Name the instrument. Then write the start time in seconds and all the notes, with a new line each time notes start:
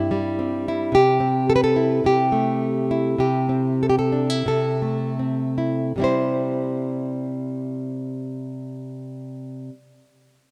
nylon-string guitar
Already playing: G2 C4 E4 G4
0.11 G3
0.39 C4
0.68 E4
0.92 C3 G4
1.20 C4
1.50 A4
1.56 B4
1.64 A4
1.76 E4
2.04 C3 G4
2.32 A3
2.91 E4
3.18 C3 G4
3.49 C4
3.83 A4
3.90 G4
3.99 A4
4.12 D4
4.30 E4
4.46 C3 A4
4.82 A3
5.19 C4
5.58 E4
5.96 C3 G3 C4
6.02 E4 C5